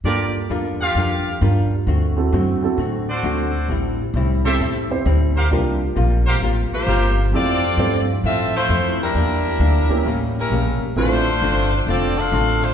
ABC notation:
X:1
M:4/4
L:1/8
Q:"Swing" 1/4=132
K:F
V:1 name="Trumpet section"
[FGBd] z2 [FGf]3 z2 | z4 z [^FAcd]3 | z3 [GAce] z3 [GBcf] | z3 [GBcf] z2 [GBcf] z |
z8 | z8 | z8 |]
V:2 name="Saxophone section"
z8 | z8 | z8 | z4 z [B,FGc]2 z |
[CFAd]3 z [CFAe] [A,EFc]2 [G,DEB]- | [G,DEB]4- [G,DEB] [G,^CEB]2 z | [A,DFc]4 [CFAd] [DAcf]2 [A,DFc] |]
V:3 name="Grand piano"
[B,DFA]4- [B,DFA] z3 | z [CE^FA]2 [CEFA] z4 | z3 [CEGA] z [CEGc] z2 | [DFGB] z6 z |
[CEGA] z [CEGc] z4 z | z3 [B,_DEG] z4 | [A,CEF] z6 z |]
V:4 name="Hollow-body jazz guitar"
[G,DFB] z [G,DFB] z [G,DFB] z [G,DFB] z | [D,A,C^F] z [D,A,CF] z [D,A,CF] z [D,A,CF] z | [A,,G,CE] z [A,,G,CE] z [A,,G,CE] z [A,,G,CE] z | [C,G,B,F] z [C,G,B,F] z [C,G,B,F] z [C,G,B,F] z |
[F,,E,A,C] z [F,,E,A,C] z [F,,E,A,C] z [F,,E,A,C] z | [E,B,DG] z [E,B,DG] z [A,,G,B,^C] z [A,,G,B,C] z | [D,A,CF] z [D,A,CF] z [D,A,CF] z [D,A,CF] z |]
V:5 name="Upright bass" clef=bass
G,,2 E,,2 F,,2 G,,2 | D,,2 ^F,, z A,,2 D,,2 | A,,,2 C,,2 E,,2 D,,2 | C,,2 B,,,2 A,,, z G,,,2 |
F,,2 G,,2 A,,2 F,,2 | E,,2 D,, z A,,,2 B,,, z | A,,,2 G,,,2 F,,,2 A,,,2 |]